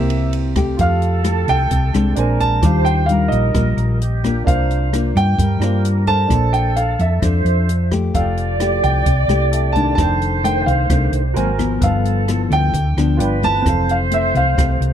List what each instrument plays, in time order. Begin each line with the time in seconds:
Already playing: fingered electric bass C2, nylon-string guitar C3 A#3 E4 G4, grand piano C4 G4 A#4 E5
0.10 ride
0.33 ride
0.56 nylon-string guitar A3 G4, kick, cross-stick, ride
0.77 fingered electric bass F2, nylon-string guitar F3, grand piano F4 G4 A4 F5, flute section A4, kick, closed hi-hat
0.83 grand piano F6
1.02 closed hi-hat
1.24 nylon-string guitar A3 E4 G4, cross-stick, closed hi-hat
1.48 fingered electric bass C2, grand piano G5, kick, closed hi-hat
1.70 fingered electric bass C2, nylon-string guitar C3, kick, closed hi-hat
1.93 fingered electric bass C2, nylon-string guitar G#3 C4 D4, cross-stick, closed hi-hat
2.15 fingered electric bass A#1, grand piano D4 A#4 C5 G#5, flute section A#4, closed hi-hat
2.40 grand piano A5, kick, closed hi-hat
2.61 fingered electric bass D#2, nylon-string guitar D#3 G3 D4 F4, grand piano G4 D6, flute section C5, kick, cross-stick, closed hi-hat
2.65 grand piano F5
2.85 grand piano G5, closed hi-hat
3.06 nylon-string guitar G3 D4 F4, grand piano F5, closed hi-hat
3.11 flute section A#4
3.28 fingered electric bass A#1, grand piano D#5, kick, closed hi-hat
3.54 fingered electric bass A#1, nylon-string guitar A#2 G3 F4, kick, cross-stick, closed hi-hat
3.77 fingered electric bass A#1, closed hi-hat
4.02 flute section G4, closed hi-hat
4.24 nylon-string guitar A#3 D4 F4, kick, cross-stick, closed hi-hat
4.44 fingered electric bass C2, nylon-string guitar C3, grand piano D4 A#4 C5 F5, flute section C5, kick, closed hi-hat
4.50 grand piano F5
4.71 closed hi-hat
4.92 nylon-string guitar A#3 D4 F4, cross-stick, closed hi-hat
5.15 fingered electric bass G2, grand piano G5, kick, closed hi-hat
5.38 fingered electric bass G2, nylon-string guitar G3, flute section A#4, kick, closed hi-hat
5.60 fingered electric bass G2, nylon-string guitar A#3 D4 F4, grand piano D4 A#4 C5 F5, cross-stick, closed hi-hat
5.85 closed hi-hat
6.07 nylon-string guitar D4 A4 C5, grand piano A5, kick, closed hi-hat
6.28 fingered electric bass A#1, nylon-string guitar A#3, grand piano D4, flute section A4, kick, cross-stick, closed hi-hat
6.32 grand piano C5 A5
6.53 grand piano G5, closed hi-hat
6.76 grand piano F5, closed hi-hat
6.99 fingered electric bass F2, grand piano E5, kick, closed hi-hat
7.22 fingered electric bass F2, nylon-string guitar F3 D4 A4 C5, flute section C5, kick, cross-stick, closed hi-hat
7.45 fingered electric bass F2, closed hi-hat
7.69 closed hi-hat
7.92 nylon-string guitar A3 G4, kick, cross-stick, closed hi-hat
8.14 fingered electric bass F1, nylon-string guitar F3, grand piano A4 F5 E6, flute section D5, kick, closed hi-hat
8.18 grand piano G5
8.37 closed hi-hat
8.60 nylon-string guitar A3 E4 G4, cross-stick, closed hi-hat
8.83 fingered electric bass C2, grand piano G5, kick, closed hi-hat
9.06 fingered electric bass C2, nylon-string guitar C3, kick, closed hi-hat
9.28 fingered electric bass C2, nylon-string guitar A3 E4 G4, cross-stick, closed hi-hat
9.51 grand piano A4 E5 G5, closed hi-hat
9.72 nylon-string guitar D#3 A3 D4, grand piano A5, kick, closed hi-hat
9.95 fingered electric bass F1, nylon-string guitar F2, grand piano A4 A5, flute section C5, kick, cross-stick, closed hi-hat
9.99 grand piano D5 G5
10.22 closed hi-hat
10.43 nylon-string guitar D#3 A3 D4, grand piano G5, closed hi-hat
10.62 grand piano G5
10.66 fingered electric bass C2, grand piano F5, kick, closed hi-hat
10.90 fingered electric bass C2, nylon-string guitar C3 D#3 A3 D4, kick, cross-stick, closed hi-hat
11.12 fingered electric bass C2, closed hi-hat
11.33 fingered electric bass G#1, nylon-string guitar F#3 A#3 C4, grand piano F#4 A#4 C5 G#5, flute section A#4, closed hi-hat
11.58 nylon-string guitar F3 B3, kick, cross-stick, closed hi-hat
11.80 fingered electric bass G1, nylon-string guitar G2, flute section A4, grand piano B4 F5 E6, kick, closed hi-hat
11.85 grand piano A5
12.05 closed hi-hat
12.28 nylon-string guitar F3 B3 E4, cross-stick, closed hi-hat
12.50 fingered electric bass D2, grand piano G5, kick, closed hi-hat
12.73 fingered electric bass D2, nylon-string guitar D3, kick, closed hi-hat
12.97 fingered electric bass D2, nylon-string guitar F3 B3 D4, cross-stick, closed hi-hat
13.17 fingered electric bass G1, grand piano F4 B4 D5 G5, flute section B4, closed hi-hat
13.42 nylon-string guitar E3 A3 C4, grand piano A5, kick, closed hi-hat
13.62 nylon-string guitar F2, grand piano C4 A4
13.66 fingered electric bass F1, grand piano C5 F5, flute section C5, kick, cross-stick, closed hi-hat
13.89 grand piano F5, closed hi-hat
14.10 nylon-string guitar E3 A3 C4, grand piano E5, closed hi-hat
14.34 fingered electric bass C2, grand piano F5, kick, closed hi-hat
14.57 fingered electric bass C2, nylon-string guitar C3 E3 A3 C4, kick, cross-stick, closed hi-hat
14.81 fingered electric bass C2, closed hi-hat